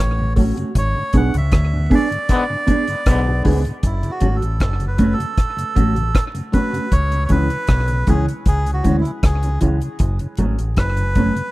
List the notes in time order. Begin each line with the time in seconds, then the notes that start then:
Already playing: C#5
0.00 A1
0.19 F#2 C#3
0.36 F#3 A3 C#4 F#4, kick, open hi-hat
0.57 F#2 C#3 A3 C#4 F#4, closed hi-hat
0.75 G#1 C#5, kick, closed hi-hat
0.96 G#2 D3
1.13 B1 G#3 B3 D4 G#4 F#5, kick, closed hi-hat
1.34 C#2 G#2 D3 E5, closed hi-hat
1.52 D2, kick, cross-stick, closed hi-hat
1.74 G#2 D3
1.90 G#3 B3 D4 G#4, kick, open hi-hat
1.95 D5
2.11 G#2 D3, closed hi-hat
2.29 G#2 D3 B3, kick, cross-stick, closed hi-hat
2.50 G#2 D3
2.66 G#3 B3 D4 G#4, kick, closed hi-hat
2.87 G#2 D3, closed hi-hat
3.06 B1 G#2 D3 B3, kick, cross-stick, closed hi-hat
3.26 G#2 D3, muted clean electric guitar stroke
3.44 C#2 G#3 B3 D4 G#4, kick, open hi-hat
3.65 G#2 D3, closed hi-hat
3.83 F#1 E4, kick, closed hi-hat
4.03 F#2 C#3, closed hi-hat
4.11 F#4
4.20 G#1 F#3 A3 C#4 F#4, kick, closed hi-hat
4.36 A4
4.42 A1, closed hi-hat
4.60 F#1 A4, kick, cross-stick, closed hi-hat
4.80 F#2 C#3, closed hi-hat
4.88 B4
4.98 F#3 A3 C#4 F#4, kick, closed hi-hat
5.13 A4
5.19 F#2 C#3, closed hi-hat
5.38 kick, cross-stick, closed hi-hat
5.57 F#2 C#3, closed hi-hat
5.75 A1 F#3 A3 C#4 F#4, kick, closed hi-hat
5.95 F#2 C#3, closed hi-hat
6.15 kick, cross-stick, closed hi-hat
6.35 F#2 C#3, closed hi-hat
6.52 F#3 A3 C#4 F#4 B4, kick, closed hi-hat
6.73 F#2 C#3 A3 C#4 F#4, closed hi-hat
6.92 C#2 C#5, kick, closed hi-hat
7.11 C#3, closed hi-hat
7.26 E3 G#3 C#4 C#5, closed hi-hat
7.30 C#2 E3 G#3 C#4 B4, kick
7.50 C#3, closed hi-hat
7.67 B1, kick, cross-stick, closed hi-hat
7.88 C#3, closed hi-hat
8.07 C#2 E3 G#3 C#4 G#4, kick, closed hi-hat
8.26 C#3, closed hi-hat
8.46 C#2 G#4, kick, closed hi-hat
8.66 C#3, closed hi-hat
8.73 F#4
8.84 D2 E3 G#3 C#4, kick, closed hi-hat
9.00 C#3 E4
9.05 closed hi-hat
9.23 C#2 G#4, kick, cross-stick, closed hi-hat
9.43 C#3, muted clean electric guitar stroke, closed hi-hat
9.61 C#2 E3 G#3 C#4, kick, closed hi-hat
9.81 C#3, closed hi-hat
9.99 F#1, kick, closed hi-hat
10.19 F#2 C#3, closed hi-hat
10.37 G#1 F#3 A3 C#4, kick, closed hi-hat
10.59 A1, closed hi-hat
10.77 F#1 B4, kick, cross-stick, closed hi-hat
10.97 F#2 C#3, closed hi-hat
11.15 F#3 A3 C#4, kick, closed hi-hat
11.35 F#2 C#3, closed hi-hat